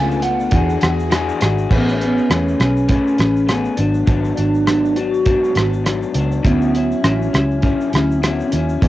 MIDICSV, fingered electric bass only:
0, 0, Header, 1, 2, 480
1, 0, Start_track
1, 0, Key_signature, 3, "major"
1, 0, Tempo, 592885
1, 1383, Time_signature, 4, 2, 24, 8
1, 7189, End_track
2, 0, Start_track
2, 0, Title_t, "Fingered electric bass"
2, 0, Program_c, 0, 33
2, 0, Note_on_c, 0, 37, 107
2, 392, Note_off_c, 0, 37, 0
2, 418, Note_on_c, 0, 40, 104
2, 612, Note_off_c, 0, 40, 0
2, 669, Note_on_c, 0, 40, 98
2, 1050, Note_off_c, 0, 40, 0
2, 1148, Note_on_c, 0, 32, 85
2, 1338, Note_off_c, 0, 32, 0
2, 1382, Note_on_c, 0, 33, 85
2, 1766, Note_off_c, 0, 33, 0
2, 1861, Note_on_c, 0, 40, 89
2, 2054, Note_off_c, 0, 40, 0
2, 2102, Note_on_c, 0, 35, 77
2, 2409, Note_off_c, 0, 35, 0
2, 2583, Note_on_c, 0, 33, 78
2, 2967, Note_off_c, 0, 33, 0
2, 3064, Note_on_c, 0, 32, 102
2, 3256, Note_off_c, 0, 32, 0
2, 3298, Note_on_c, 0, 32, 87
2, 3492, Note_off_c, 0, 32, 0
2, 3549, Note_on_c, 0, 32, 80
2, 4378, Note_off_c, 0, 32, 0
2, 4499, Note_on_c, 0, 32, 82
2, 4885, Note_off_c, 0, 32, 0
2, 4980, Note_on_c, 0, 37, 81
2, 5173, Note_off_c, 0, 37, 0
2, 5221, Note_on_c, 0, 38, 93
2, 5606, Note_off_c, 0, 38, 0
2, 5701, Note_on_c, 0, 33, 100
2, 5895, Note_off_c, 0, 33, 0
2, 5943, Note_on_c, 0, 37, 78
2, 6251, Note_off_c, 0, 37, 0
2, 6426, Note_on_c, 0, 38, 89
2, 6810, Note_off_c, 0, 38, 0
2, 6907, Note_on_c, 0, 39, 78
2, 7098, Note_off_c, 0, 39, 0
2, 7142, Note_on_c, 0, 40, 92
2, 7189, Note_off_c, 0, 40, 0
2, 7189, End_track
0, 0, End_of_file